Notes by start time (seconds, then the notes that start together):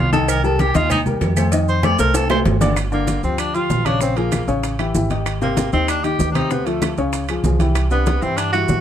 Already playing: C2 F4
0.12 D#3 D#4 A4 D#5, cowbell, high conga, low agogo, maracas
0.28 A#4, cowbell, low agogo, claves, maracas
0.44 G3 G4 A4 A#4, high conga, maracas
0.59 G4, cowbell, high conga, low agogo, maracas
0.74 D#2 D#3 D#4 F4 D#5, cowbell, high conga, maracas
0.90 D#4, cowbell, high conga, low conga, low agogo, claves, maracas
1.06 G3 G4 A#4, high conga, low conga, maracas
1.21 F2, cowbell, high conga, low timbale, low agogo, maracas
1.37 A3 A4 C5, cowbell, high conga, low agogo, claves, maracas
1.52 D#3 D#4 D#5, cowbell, high conga, maracas
1.68 C5, high conga, maracas
1.83 A3 A4 C5 D5, cowbell, high conga, low agogo, claves, maracas
1.99 C2 A3 A4 A#4 C5, cowbell, maracas
2.14 A4, cowbell, high bongo, high conga, high timbale, low agogo, maracas
2.30 A3 A4 C5, high bongo, high conga, low timbale, low agogo, claves, maracas
2.45 G1, cowbell, low bongo, high conga, low timbale, maracas
2.61 D3 D4 D5, cowbell, low bongo, high conga, low timbale, low agogo, maracas
2.76 high bongo, high conga, high timbale, claves, maracas
2.92 D3 A#3 D4 D5, high bongo, high conga, maracas
3.07 high bongo, high conga, high timbale, maracas
3.23 D2 F3 C4 F4 G4, high bongo, high conga, maracas
3.38 D4, high bongo, high conga, high timbale, claves, maracas
3.54 F3 F4 G4, high bongo, high conga, high timbale, maracas
3.70 A#1, high bongo, low bongo, high conga, low timbale, maracas
3.85 C#3 C#4 D4 C#5, high conga, high timbale, claves, maracas
4.01 C#3 C4 C#4 C#5, high bongo, high conga, maracas
4.16 F3 A#3 F4 G#4, high bongo, high conga, high timbale, maracas
4.32 high bongo, high conga, high timbale, claves, maracas
4.48 A1 C#3 C#4 C#5, high bongo, maracas
4.63 high bongo, high conga, high timbale, maracas
4.79 E3 E4 G4, high bongo, high conga, high timbale, claves, maracas
4.95 G#1 E3 E4 G4, high bongo, low bongo, high conga, maracas
5.10 D#3 D#4 G4, high conga, high timbale, maracas
5.26 high bongo, high timbale, claves, maracas
5.41 C3 A#3 C4 C5, high bongo, high conga, maracas
5.57 high bongo, high conga, high timbale, maracas
5.73 D#2 D#3 C4 D#4 G4, high bongo, high conga, maracas
5.88 D4, high bongo, high conga, high timbale, claves, maracas
6.04 D#3 D#4 G4, high bongo, high conga, high timbale, maracas
6.19 D2, high bongo, low bongo, high conga, low timbale, maracas
6.31 C3 D4 D#4, high conga
6.35 C4 C5, high timbale, claves, maracas
6.51 C3 B3 C4 C5, high bongo, high conga, maracas
6.66 F3 A3 F4 A4, high bongo, high conga, high timbale, maracas
6.82 high bongo, high conga, high timbale, claves, maracas
6.97 C#2 C#3 C#4 C#5, high bongo, maracas
7.13 high bongo, high conga, high timbale, maracas
7.28 F3 F4 G#4, high bongo, high conga, high timbale, claves, maracas
7.44 C2 F3 F4 G#4, high bongo, low bongo, high conga, low timbale, maracas
7.60 E3 E4 G4, high conga, high timbale, maracas
7.75 high bongo, high conga, high timbale, claves, maracas
7.91 C3 B3 D4 B4, high bongo, high conga, maracas
8.06 high bongo, high conga, high timbale, maracas
8.22 G2 E3 C4 E4 G4, high bongo, high conga, maracas
8.37 D4, high bongo, high conga, high timbale, claves, maracas
8.52 E3 G3 E4 F#4, high bongo, high conga, high timbale, maracas
8.68 A2, high bongo, low bongo, high conga, low timbale, maracas